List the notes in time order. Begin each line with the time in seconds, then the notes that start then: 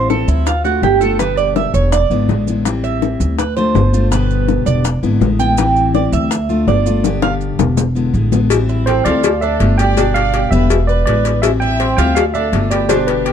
Already playing: A1 E3 G3 C4 E4
0.10 A4, high bongo, maracas
0.28 D2 E4, high bongo, maracas
0.46 F4, muted steel-string acoustic guitar stroke, high bongo, maracas
0.64 A3 D4 F4 F#4, high bongo, maracas
0.82 G1 D3 A3 D4 F4 G4, high bongo, low bongo, maracas
1.01 A3 D4 F4 A4, high bongo, maracas
1.19 B2 D3 G3 B3 G4 B4, high bongo, maracas
1.37 D5, maracas
1.56 E5, high bongo, maracas
1.74 E1 C#5, high bongo, maracas
1.92 D5, muted steel-string acoustic guitar stroke, high bongo, maracas
2.10 G#1 D3 G#3 B3 E4, high bongo, maracas
2.28 A1 D3 G#3 B3 E4, high bongo, low bongo, maracas
2.47 D3 G#3 B3 E4, high bongo, maracas
2.65 E3 G3 C4 E4, high bongo, maracas
2.84 E5, maracas
3.02 high bongo, maracas
3.20 D2, high bongo, maracas
3.39 B4, muted steel-string acoustic guitar stroke, high bongo, maracas
3.57 A3 D4 F4 C5, high bongo, maracas
3.75 G1 D3 A3 D4 F4, high bongo, low bongo, maracas
3.93 A3 D4 F4, high bongo, maracas
4.11 B2 D3 G3 B3 G4 B4, high bongo, maracas
4.30 maracas
4.48 high bongo, maracas
4.66 E1 D5, high bongo, maracas
4.85 muted steel-string acoustic guitar stroke, high bongo, maracas
5.03 G#1 D3 G#3 B3 E4, high bongo, maracas
5.21 A1 D3 G#3 B3 E4, high bongo, low bongo, maracas
5.39 D3 G#3 B3 E4 G5, high bongo, maracas
5.58 E3 G3 C4 E4, high bongo, maracas
5.76 maracas
5.94 D5, high bongo, maracas
6.12 D2 E5, high bongo, maracas
6.31 muted steel-string acoustic guitar stroke, high bongo, maracas
6.49 A3 D4 F4, high bongo, maracas
6.67 G1 D3 A3 D4 F4 D5, high bongo, low bongo, maracas
6.86 A3 D4 F4, high bongo, maracas
7.04 B2 D3 G3 B3 G4, high bongo, maracas
7.22 F5, high bongo, maracas
7.41 maracas
7.59 E1, high bongo, maracas
7.77 muted steel-string acoustic guitar stroke, low bongo, maracas
7.95 D3 G#3 B3 E4, maracas
8.14 A1 D3 G#3 B3 E4, maracas
8.32 D3 G#3 B3 E4, low bongo, maracas
8.50 E3 G3 C4 E4, cowbell, maracas
8.69 E4, maracas
8.85 C4 A4 C5, cowbell, maracas
9.04 D2 G3 C4 E4 F4 A4 D5, cowbell, maracas
9.24 muted steel-string acoustic guitar stroke, cowbell, maracas
9.41 D4 A4 E5, maracas
9.60 G1 D3 A3 D4 F4, cowbell, maracas
9.78 G4 D5 G5, cowbell, maracas
9.96 B2 D3 G3 B3 D4 G4, cowbell, maracas
10.14 D5 F5, cowbell, maracas
10.34 G4, cowbell, maracas
10.51 E1 D3 G3 B3 G4 B4 E5, maracas
10.70 muted steel-string acoustic guitar stroke, cowbell, maracas
10.87 B4 D5, maracas
11.06 A1 D3 G#3 B3 E4 B4 D5, cowbell, maracas
11.25 cowbell, maracas
11.42 E3 G3 C4 E4 C5 E5, cowbell, maracas
11.60 E4 E5 G5, maracas
11.80 C4, cowbell, maracas
11.97 D2 G3 C4 E4 F4 E5 G5, cowbell, maracas
12.15 D5 F5, muted steel-string acoustic guitar stroke, cowbell, maracas
12.33 D4 A4 E5, maracas
12.52 G1 D3 A3 D4 F4, cowbell, maracas
12.70 G4 B4 D5, cowbell, maracas
12.89 B2 D3 G3 B3 D4 G4 C5, cowbell, maracas
13.07 G4 B4, cowbell, maracas
13.25 G4, cowbell, maracas